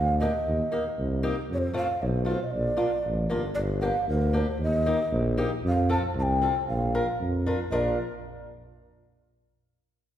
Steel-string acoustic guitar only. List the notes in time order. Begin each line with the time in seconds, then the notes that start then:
0.21 A#3 D4 G4
0.71 A#3 D#4 G4
1.23 A#3 D#4 G4
1.74 A3 C4 F4
2.25 A3 C4 F4
2.77 A#3 D4 F4
3.30 A#3 D4 F4
3.82 A#3 D4 G4
4.33 A#3 D4 G4
4.86 A#3 D#4 G4
5.37 A#3 D#4 G4
5.89 C4 F4 A4
6.42 C4 F4 A4
6.95 D4 F4 A#4
7.46 D4 F4 A#4
7.72 D4 F4 A#4